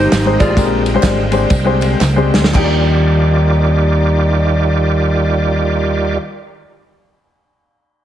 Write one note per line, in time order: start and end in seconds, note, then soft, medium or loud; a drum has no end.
0.00 0.54 D#3 medium
0.00 0.55 G#3 medium
0.00 0.54 A#3 medium
0.00 0.55 C4 medium
0.00 0.41 D#4 medium
0.00 0.54 G4 medium
0.00 0.55 G4 medium
0.00 0.10 C5 medium
0.00 0.39 C5 loud
0.12 0.36 G#1 loud
0.12 snare loud
0.12 clap loud
0.12 ride medium
0.12 tambourine loud
0.25 0.48 G#3 medium
0.25 0.48 C4 medium
0.25 0.49 D#4 medium
0.25 0.49 G4 medium
0.25 0.49 C5 medium
0.40 0.55 A1 medium
0.40 1.97 F4 medium
0.40 1.98 G#4 medium
0.40 1.97 D5 loud
0.40 kick loud
0.40 ride medium
0.40 tambourine medium
0.56 0.96 A#1 loud
0.56 1.29 A#2 medium
0.56 2.51 D3 medium
0.56 0.85 G#3 medium
0.56 2.51 G#3 medium
0.56 2.51 A#3 medium
0.56 0.85 C4 medium
0.56 2.51 C4 medium
0.56 0.86 D4 medium
0.56 0.86 G4 medium
0.56 0.86 A#4 medium
0.56 2.51 G5 medium
0.56 kick loud
0.56 ride medium
0.56 tambourine medium
0.86 ride medium
0.86 tambourine medium
0.94 1.18 G#3 loud
0.94 1.18 C4 medium
0.94 1.18 D4 medium
0.94 1.19 G4 medium
0.94 1.19 C5 loud
1.03 1.44 G#1 loud
1.03 kick medium
1.03 snare loud
1.03 clap loud
1.03 ride medium
1.03 tambourine medium
1.31 1.51 G#3 medium
1.31 1.51 C4 medium
1.31 1.51 D4 medium
1.31 1.51 G4 medium
1.31 1.52 C5 medium
1.31 ride medium
1.31 tambourine medium
1.50 1.94 C2 medium
1.50 kick loud
1.50 ride medium
1.50 tambourine medium
1.65 1.97 G#3 medium
1.65 1.98 C4 medium
1.65 1.98 D4 medium
1.65 1.98 G4 medium
1.65 1.98 C5 loud
1.81 ride medium
1.81 tambourine medium
2.01 2.29 C#2 loud
2.01 snare medium
2.01 clap loud
2.01 tambourine loud
2.16 2.44 G#3 loud
2.16 2.44 C4 medium
2.16 2.44 D4 medium
2.16 2.45 G4 medium
2.16 2.45 C5 medium
2.34 2.52 D2 medium
2.34 snare medium
2.34 tambourine medium
2.44 snare loud
2.51 6.16 D#2 medium
2.51 6.12 F3 medium
2.51 6.15 D4 medium
2.51 kick loud
2.51 clap medium
2.51 crash medium
2.55 6.17 D#2 loud
2.55 6.17 D#3 medium
2.55 6.18 G3 medium
2.55 6.18 D#4 medium
2.55 6.18 F4 medium
2.55 6.20 G4 loud
2.55 6.18 D5 medium
2.55 6.16 G5 medium